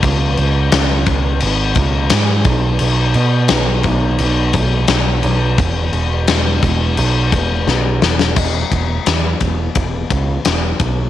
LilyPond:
<<
  \new Staff \with { instrumentName = "Picked electric bass" } { \clef bass \time 4/4 \key e \major \tempo 4 = 86 cis,8 cis,8 cis,8 cis,8 gis,,8 cis,8 gis,8 b,,8 | b,,8 b,8 b,,8 b,,8 b,,8 b,,8 b,,8 b,,8 | e,,8 e,,8 e,,8 e,,8 b,,8 e,,8 b,,8 e,,8 | e,,8 e,,8 e,8 e,,8 e,,8 cis,8 e,,8 b,,8 | }
  \new DrumStaff \with { instrumentName = "Drums" } \drummode { \time 4/4 <cymc bd>8 cymc8 <cymc sn>8 <cymc bd>8 cymc8 <cymc bd>8 <cymc sn>8 <cymc bd>8 | cymc8 cymc8 <cymc sn>8 <cymc bd>8 cymc8 <cymc bd>8 <cymc sn>8 cymc8 | <cymc bd>8 cymc8 <cymc sn>8 <cymc bd>8 cymc8 <cymc bd>8 sn8 sn16 sn16 | <cymc bd>8 <bd cymr>8 <cymr sn>8 <bd cymr>8 <bd cymr>8 <bd cymr>8 <cymr sn>8 <bd cymr>8 | }
>>